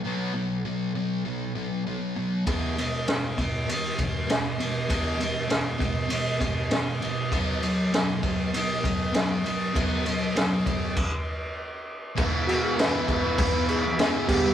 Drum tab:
CC |--------|--------|--------|--------|
RD |--------|xxxxxxxx|xxxxxxxx|xxxxxxxx|
SD |--------|--o---o-|--o---o-|--o---o-|
BD |--------|o--o-o--|o--o-o--|o--o-o--|

CC |----x---|xxxxxxxx|
RD |xxxx----|--------|
SD |--o-----|--o---o-|
BD |o--oo---|o--oo--o|